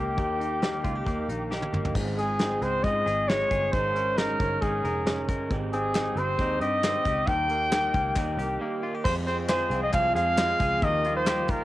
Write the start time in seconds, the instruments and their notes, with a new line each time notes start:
Already playing: picked electric bass C#2, clean electric guitar D#3 D#4 G4, trumpet G4
0.00 clean electric guitar A#3
0.17 picked electric bass D#2, clean electric guitar D#3 A#3 D#4 G4, kick, closed hi-hat
0.39 clean electric guitar A#3 D#4 G4, closed hi-hat
0.60 clean electric guitar D#3 A#3 D#4 G4, snare, closed hi-hat
0.83 picked electric bass C#2, clean electric guitar A#3 D#4 F4 G4, kick, closed hi-hat
0.96 clean electric guitar G4
1.04 picked electric bass D#2, clean electric guitar D#3 A#3 D#4 G4, kick, closed hi-hat
1.28 picked electric bass A#1, clean electric guitar A#3 D#4 G4, closed hi-hat
1.51 clean electric guitar D#3 A#3 D#4 G4, snare
1.62 high tom
1.73 picked electric bass G1, clean electric guitar A#3 D#4 G4, mid tom
1.85 floor tom
1.95 picked electric bass G#1, clean electric guitar G#2 C#3 F3 G#3 C4 G#4, kick, crash
2.18 clean electric guitar F3 G#3 C4 G#4, trumpet G#4, closed hi-hat
2.39 clean electric guitar F3 G#3 C4, snare, closed hi-hat
2.44 clean electric guitar G#4
2.62 picked electric bass C#2, clean electric guitar G#3 C4 G#4, trumpet C5, closed hi-hat
2.66 clean electric guitar F3
2.84 picked electric bass G#2, clean electric guitar G#2 C#3 F3 G#3 C4 G#4, trumpet D#5, kick, closed hi-hat
3.06 picked electric bass G#1, clean electric guitar G#3 C4 G#4, closed hi-hat
3.11 clean electric guitar F3
3.28 clean electric guitar F3 G#3, trumpet C#5, snare, closed hi-hat
3.32 clean electric guitar C4 G#4
3.51 picked electric bass G1, clean electric guitar F3 G#3 C4 G#4, kick, closed hi-hat
3.72 picked electric bass G#1, clean electric guitar G#2 C#3 G#3 C#4 D#4 A#4, trumpet C5, kick, closed hi-hat
3.95 clean electric guitar G#3 C#4 D#4 A#4, closed hi-hat
4.16 clean electric guitar G#3 C#4 D#4 A#4, trumpet A#4, snare, closed hi-hat
4.40 picked electric bass G1, clean electric guitar G#3 C#4 D#4 A#4, kick, closed hi-hat
4.61 picked electric bass G#1, clean electric guitar G#2 C#3 G#3 C#4 D#4 A#4, trumpet G#4, kick, closed hi-hat
4.83 picked electric bass F1, clean electric guitar G#3 C#4 D#4 A#4, closed hi-hat
5.06 clean electric guitar G#3 C#4 D#4 A#4, snare, closed hi-hat
5.28 picked electric bass G1, clean electric guitar G#3 C#4 D#4 A#4, kick, closed hi-hat
5.50 picked electric bass G#1, clean electric guitar G#3 C4 D#4 G4, kick, closed hi-hat
5.72 clean electric guitar C4 D#4 G4, trumpet G#4, closed hi-hat
5.94 clean electric guitar G#3 C4 D#4 G4, snare, clap, closed hi-hat
6.16 picked electric bass G1, clean electric guitar C4 D#4 G4, trumpet C5, closed hi-hat
6.38 picked electric bass D#2, clean electric guitar G#3 C4 D#4 G4, kick, closed hi-hat
6.59 picked electric bass G2, clean electric guitar C4 D#4 G4, trumpet D#5, closed hi-hat
6.82 clean electric guitar G#3 C4 D#4, snare, clap, closed hi-hat
6.86 clean electric guitar G4
7.03 picked electric bass C#2, clean electric guitar C4 D#4 G4, kick, closed hi-hat
7.07 clean electric guitar G4
7.25 picked electric bass D#2, clean electric guitar D#3 G3 A#3 D#4 G4, trumpet G5, kick, closed hi-hat
7.48 clean electric guitar A#3 D#4 G4, closed hi-hat
7.69 clean electric guitar G3 A#3 D#4 G4, snare, clap, closed hi-hat
7.92 picked electric bass C#2, clean electric guitar A#3 D#4 G4, kick, closed hi-hat
8.15 picked electric bass D#2, clean electric guitar D#3 G3 A#3 D#4 G4, kick, clap, closed hi-hat
8.37 picked electric bass C2, clean electric guitar A#3 D#4 G4, closed hi-hat
8.59 clean electric guitar G3 A#3 D#4 G4
8.82 clean electric guitar A#3 D#4 F4 G4
8.95 clean electric guitar G4
9.03 clean electric guitar F2 C3 F3 G#3 F4 G#4, picked electric bass F2, string machine F3 C4 G#4, trumpet C5, kick, crash
9.26 clean electric guitar F3 G#3 C4 F4 G#4, trumpet C5, closed hi-hat
9.48 clean electric guitar F3 G#3 F4 G#4, trumpet C5, snare, clap, closed hi-hat
9.70 picked electric bass C2, clean electric guitar F3 G#3 C4 F4 G#4, closed hi-hat
9.83 trumpet D#5
9.92 picked electric bass C2, clean electric guitar F2 C3 F3 G#3 F4 G#4, trumpet F5, kick, clap, closed hi-hat
10.14 picked electric bass F2, clean electric guitar F3 G#3 F4 G#4, trumpet F5, closed hi-hat
10.36 clean electric guitar F3 G#3 F4 G#4, snare, clap, closed hi-hat
10.60 picked electric bass C#2, clean electric guitar F3 G#3 F4 G#4, kick, closed hi-hat
10.81 picked electric bass D#2, clean electric guitar D#3 A#3 F4 G4, string machine G3 D#4, trumpet D#5, kick, closed hi-hat
11.04 clean electric guitar A#3 F4 G4, closed hi-hat
11.17 trumpet C5
11.26 clean electric guitar D#3 A#3 F4, snare, clap, closed hi-hat
11.30 clean electric guitar G4
11.48 picked electric bass C#2, clean electric guitar F4 G4, trumpet A#4, kick, closed hi-hat
11.52 clean electric guitar A#3